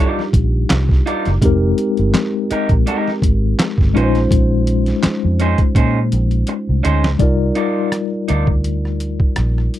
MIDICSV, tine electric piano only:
0, 0, Header, 1, 2, 480
1, 0, Start_track
1, 0, Key_signature, -3, "minor"
1, 0, Tempo, 722892
1, 938, Time_signature, 4, 2, 24, 8
1, 6503, End_track
2, 0, Start_track
2, 0, Title_t, "Tine electric piano"
2, 0, Program_c, 0, 4
2, 0, Control_c, 0, 64, 127
2, 0, Note_on_c, 0, 55, 72
2, 0, Note_on_c, 0, 62, 74
2, 0, Note_on_c, 0, 63, 73
2, 0, Note_on_c, 0, 65, 71
2, 0, Note_on_c, 0, 67, 79
2, 914, Note_off_c, 0, 55, 0
2, 918, Note_off_c, 0, 62, 0
2, 921, Note_off_c, 0, 63, 0
2, 923, Note_off_c, 0, 65, 0
2, 925, Note_off_c, 0, 67, 0
2, 939, Note_on_c, 0, 56, 75
2, 945, Note_on_c, 0, 60, 72
2, 946, Control_c, 0, 64, 0
2, 955, Note_on_c, 0, 63, 67
2, 957, Note_on_c, 0, 67, 70
2, 966, Note_on_c, 0, 70, 79
2, 1047, Control_c, 0, 64, 127
2, 2592, Note_off_c, 0, 56, 0
2, 2595, Note_off_c, 0, 60, 0
2, 2599, Note_off_c, 0, 63, 0
2, 2601, Note_off_c, 0, 67, 0
2, 2605, Note_off_c, 0, 70, 0
2, 2615, Note_on_c, 0, 56, 72
2, 2621, Note_on_c, 0, 61, 65
2, 2625, Control_c, 0, 64, 0
2, 2626, Note_on_c, 0, 63, 68
2, 2633, Note_on_c, 0, 65, 63
2, 2639, Note_on_c, 0, 71, 68
2, 2675, Note_off_c, 0, 71, 0
2, 2681, Note_on_c, 0, 72, 80
2, 2735, Control_c, 0, 64, 127
2, 4510, Note_off_c, 0, 56, 0
2, 4513, Note_off_c, 0, 61, 0
2, 4515, Note_off_c, 0, 63, 0
2, 4518, Note_off_c, 0, 65, 0
2, 4543, Note_off_c, 0, 72, 0
2, 4772, Note_on_c, 0, 55, 67
2, 4780, Note_on_c, 0, 74, 62
2, 4785, Control_c, 0, 64, 0
2, 4786, Note_on_c, 0, 63, 61
2, 4793, Note_on_c, 0, 65, 62
2, 4798, Note_on_c, 0, 70, 69
2, 4906, Control_c, 0, 64, 127
2, 6503, Note_off_c, 0, 55, 0
2, 6503, Note_off_c, 0, 63, 0
2, 6503, Note_off_c, 0, 65, 0
2, 6503, Note_off_c, 0, 70, 0
2, 6503, Note_off_c, 0, 74, 0
2, 6503, End_track
0, 0, End_of_file